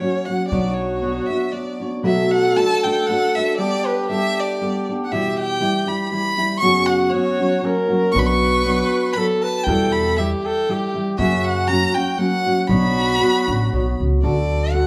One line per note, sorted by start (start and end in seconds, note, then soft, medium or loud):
0.00 0.27 F#3 medium
0.00 0.28 A#3 medium
0.00 0.27 C#4 medium
0.00 0.22 F#4 medium
0.00 0.27 F#4 medium
0.00 0.27 C#5 medium
0.25 0.52 C#4 soft
0.25 0.51 F#4 soft
0.25 0.48 F#5 medium
0.30 0.50 F#3 soft
0.30 0.52 A#3 soft
0.45 0.53 G4 medium
0.45 0.75 D5 medium
0.51 1.19 B1 medium
0.51 1.03 B2 medium
0.51 2.03 F#3 medium
0.51 1.02 B3 medium
0.51 1.03 D4 medium
0.51 1.81 F#4 loud
0.51 1.03 F#4 medium
0.51 1.03 C#5 medium
0.74 1.28 C#5 medium
1.02 1.29 B3 medium
1.02 1.29 D4 medium
1.02 1.29 F#4 medium
1.02 1.28 C#5 medium
1.27 1.53 D4 soft
1.27 1.54 F#4 soft
1.27 1.53 C#5 soft
1.27 1.53 E5 medium
1.31 1.52 B3 soft
1.52 1.81 B3 soft
1.52 1.80 D4 medium
1.52 1.79 F#4 soft
1.52 1.79 C#5 medium
1.52 1.92 D5 medium
1.80 2.03 B3 soft
1.80 2.02 D4 soft
1.80 2.03 F#4 soft
1.80 2.04 C#5 soft
2.03 2.56 B2 medium
2.03 2.56 F#3 medium
2.03 2.55 A3 medium
2.03 2.56 D4 medium
2.03 2.56 F#4 medium
2.03 3.60 A4 loud
2.03 2.57 B4 medium
2.03 2.33 E5 loud
2.31 2.58 F#5 loud
2.56 2.83 A3 medium
2.56 2.84 D4 medium
2.56 2.84 F#4 medium
2.56 2.83 B4 medium
2.56 2.85 A5 loud
2.83 3.07 A3 soft
2.83 3.08 D4 soft
2.83 3.09 F#4 soft
2.83 3.08 B4 soft
2.83 3.08 G5 loud
3.07 3.35 A3 medium
3.07 3.36 D4 medium
3.07 3.37 F#5 loud
3.11 3.36 F#4 medium
3.11 3.35 B4 medium
3.35 3.58 A3 soft
3.35 3.58 D4 soft
3.35 3.59 F#4 soft
3.35 3.59 B4 soft
3.35 3.57 E5 loud
3.58 4.09 G3 medium
3.58 4.10 B3 medium
3.58 4.09 D4 medium
3.58 5.09 G4 loud
3.58 4.10 A4 medium
3.58 3.88 D5 loud
3.86 4.10 B4 medium
4.09 4.61 G3 medium
4.09 4.62 B3 medium
4.09 4.60 D4 medium
4.09 4.61 A4 medium
4.09 4.42 E5 loud
4.40 4.89 D5 medium
4.61 4.87 G3 soft
4.61 4.88 B3 medium
4.61 4.87 D4 medium
4.61 4.88 A4 medium
4.89 5.12 B3 soft
4.89 5.12 D4 soft
4.89 5.12 A4 soft
5.04 5.14 F#5 medium
5.09 5.62 E2 medium
5.09 5.62 B2 medium
5.09 5.59 E3 medium
5.09 5.59 G3 medium
5.09 5.60 E4 medium
5.09 6.32 G4 loud
5.09 5.61 G4 medium
5.09 5.38 E5 medium
5.40 5.90 G5 loud
5.60 5.88 E3 medium
5.60 5.87 G3 medium
5.60 5.86 E4 medium
5.60 5.85 G4 medium
5.87 6.10 E3 soft
5.87 6.11 G3 soft
5.87 6.11 E4 soft
5.87 6.11 G4 medium
5.87 6.09 B5 medium
6.10 6.38 E3 medium
6.10 6.38 G3 medium
6.10 6.37 E4 medium
6.10 6.36 G4 medium
6.10 6.58 B5 loud
6.38 6.62 E3 soft
6.38 6.62 G3 soft
6.38 6.62 E4 soft
6.38 6.62 G4 soft
6.60 7.13 F#2 medium
6.60 7.13 C#3 medium
6.60 7.12 F#3 medium
6.60 7.12 B3 medium
6.60 7.12 C#4 medium
6.60 7.67 F#4 loud
6.60 7.14 F#4 medium
6.60 6.88 C#6 loud
6.86 7.11 F#5 loud
7.10 7.39 F#3 medium
7.10 7.39 B3 medium
7.10 7.38 C#4 medium
7.10 7.89 C#5 loud
7.14 7.38 F#4 medium
7.39 7.61 F#3 soft
7.39 7.62 B3 soft
7.39 7.62 C#4 soft
7.39 7.63 F#4 soft
7.62 7.89 F#3 medium
7.62 7.89 A#3 medium
7.62 7.88 C#4 medium
7.62 7.88 F#4 medium
7.62 8.18 A#4 loud
7.89 8.13 F#3 soft
7.89 8.13 A#3 soft
7.89 8.14 C#4 soft
7.89 8.14 F#4 medium
8.12 8.81 B1 medium
8.12 8.65 B2 medium
8.12 8.63 F#3 medium
8.12 8.64 B3 medium
8.12 8.64 D4 medium
8.12 8.65 F#4 medium
8.12 8.20 C#6 loud
8.16 9.19 B4 loud
8.16 8.28 B5 medium
8.26 9.12 C#6 loud
8.64 9.14 F#3 medium
8.64 9.15 B3 medium
8.64 9.15 D4 medium
8.64 9.15 F#4 medium
9.13 9.67 F#3 medium
9.13 9.67 B3 medium
9.13 9.67 D4 medium
9.13 9.67 F#4 medium
9.13 9.25 B5 loud
9.17 9.45 A4 loud
9.43 9.70 B4 loud
9.43 9.65 A5 loud
9.64 10.33 E2 loud
9.64 10.18 E2 medium
9.64 9.94 G5 loud
9.68 10.18 B2 medium
9.68 10.15 E3 medium
9.68 10.16 G3 medium
9.68 10.17 E4 medium
9.68 10.17 G4 medium
9.68 10.20 A4 loud
9.92 10.17 B5 loud
10.16 10.68 E3 medium
10.16 10.68 G3 medium
10.16 10.68 E4 medium
10.16 10.69 G4 medium
10.16 10.47 G4 loud
10.16 10.30 E5 medium
10.43 10.72 A4 loud
10.43 10.91 G5 medium
10.69 10.95 E3 medium
10.69 10.94 G3 medium
10.69 10.94 E4 medium
10.69 10.93 G4 medium
10.69 11.19 G4 loud
10.94 11.19 E3 soft
10.94 11.19 G3 soft
10.94 11.19 E4 soft
10.94 11.18 G4 soft
11.18 11.69 F#2 medium
11.18 11.84 F#2 medium
11.18 11.69 C#3 medium
11.18 11.68 F#3 medium
11.18 11.68 A#3 medium
11.18 11.70 C#4 medium
11.18 12.44 F#4 medium
11.18 11.69 F#4 medium
11.18 11.46 E5 loud
11.45 11.69 F#5 loud
11.68 11.95 F#3 medium
11.68 11.94 A#3 medium
11.68 11.94 C#4 medium
11.68 11.94 F#4 medium
11.68 11.96 A#5 loud
11.94 12.17 F#3 soft
11.94 12.17 A#3 soft
11.94 12.18 C#4 soft
11.94 12.18 F#4 medium
11.94 12.20 G5 loud
12.18 12.45 F#3 medium
12.18 12.45 A#3 medium
12.18 12.45 C#4 medium
12.18 12.45 F#4 medium
12.18 12.69 F#5 loud
12.46 12.68 F#3 soft
12.46 12.69 A#3 soft
12.46 12.70 C#4 soft
12.46 12.69 F#4 medium
12.67 13.20 B1 loud
12.67 13.20 B2 medium
12.67 14.87 F#3 medium
12.67 13.18 B3 medium
12.67 13.20 D4 medium
12.67 13.94 F#4 loud
12.67 13.20 F#4 medium
12.67 13.20 C#5 medium
12.67 13.97 B5 loud
13.20 13.47 B3 medium
13.20 13.47 D4 medium
13.20 13.47 F#4 medium
13.20 13.46 C#5 medium
13.47 13.70 A1 medium
13.47 13.71 B3 soft
13.47 13.71 D4 soft
13.47 13.72 F#4 soft
13.47 13.71 C#5 medium
13.72 13.97 B1 medium
13.72 14.22 B3 medium
13.72 14.23 D4 medium
13.72 14.23 F#4 medium
13.72 14.24 C#5 medium
14.00 14.21 C#2 medium
14.23 14.87 D2 medium
14.23 14.73 D3 medium
14.23 14.74 D4 medium
14.23 14.74 F#4 medium
14.23 14.87 A4 medium
14.23 14.74 A4 medium
14.23 14.74 D5 medium
14.73 14.87 D3 medium
14.73 14.87 D4 medium
14.73 14.87 F#4 medium
14.73 14.87 A4 medium
14.73 14.87 F#5 loud